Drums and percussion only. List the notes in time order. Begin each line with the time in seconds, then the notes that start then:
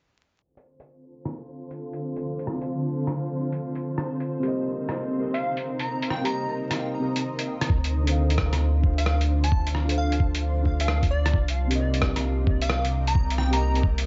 0.57 closed hi-hat
0.80 closed hi-hat
1.25 cross-stick, closed hi-hat
1.71 closed hi-hat
1.93 closed hi-hat
2.16 closed hi-hat
2.39 closed hi-hat
2.47 cross-stick
2.61 closed hi-hat
3.07 cross-stick, closed hi-hat
3.52 closed hi-hat
3.75 closed hi-hat
3.98 cross-stick, closed hi-hat
4.20 closed hi-hat
4.43 closed hi-hat
4.89 cross-stick, closed hi-hat
5.34 closed hi-hat
5.57 closed hi-hat
5.79 closed hi-hat
6.02 closed hi-hat
6.10 cross-stick
6.25 closed hi-hat
6.71 cross-stick, closed hi-hat
7.16 closed hi-hat
7.39 closed hi-hat
7.61 cross-stick, closed hi-hat
7.70 kick
7.84 closed hi-hat
8.07 closed hi-hat
8.30 closed hi-hat
8.38 kick, cross-stick
8.53 cross-stick, closed hi-hat
8.84 kick
8.98 closed hi-hat
9.06 cross-stick
9.21 closed hi-hat
9.44 closed hi-hat
9.52 kick
9.67 closed hi-hat
9.75 cross-stick
9.89 closed hi-hat
10.12 closed hi-hat
10.20 kick
10.35 closed hi-hat
10.65 kick
10.80 closed hi-hat
10.88 cross-stick
11.03 kick, closed hi-hat
11.26 cross-stick, closed hi-hat
11.34 kick
11.48 closed hi-hat
11.71 closed hi-hat
11.94 closed hi-hat
12.02 kick, cross-stick
12.16 cross-stick, closed hi-hat
12.47 kick
12.62 closed hi-hat
12.70 cross-stick
12.85 closed hi-hat
13.07 closed hi-hat
13.15 kick
13.30 closed hi-hat
13.38 cross-stick
13.53 closed hi-hat
13.75 closed hi-hat
13.83 kick
13.98 closed hi-hat